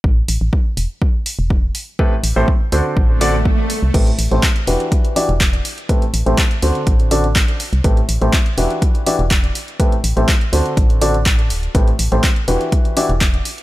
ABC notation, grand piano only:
X:1
M:4/4
L:1/16
Q:1/4=123
K:Ador
V:1 name="Grand piano"
z16 | [A,,CEGAB] z2 [A,,CEGAc] z2 [D,CDFAc]4 [D,CDFAd] z4 z | [A,,CEGAB] z2 [A,,CEGAc] z2 [E,DEFGB]4 [E,DEFGd] z4 z | [A,,CEGAB] z2 [A,,CEGAc] z2 [D,CDFAc]4 [D,CDFAd] z4 z |
[A,,CEGAB] z2 [A,,CEGAc] z2 [E,DEFGB]4 [E,DEFGd] z4 z | [A,,CEGAB] z2 [A,,CEGAc] z2 [D,CDFAc]4 [D,CDFAd] z4 z | [A,,CEGAB] z2 [A,,CEGAc] z2 [E,DEFGB]4 [E,DEFGd] z4 z |]